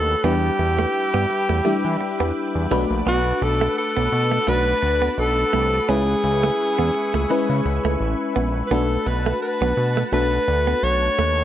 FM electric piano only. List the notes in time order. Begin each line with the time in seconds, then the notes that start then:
Already playing: A3 D4 F#4 C#5
0.24 G3 D4 E4 B4
1.65 G3 D4 E4 G4
2.71 A3 D4 F#4 B4
4.47 A3 D4 F#4 B4
5.89 G#3 C#4 E4 B4
7.30 G#3 C#4 E4 B4
8.71 A3 D4 F#4 B4
10.12 A3 D4 F#4 A4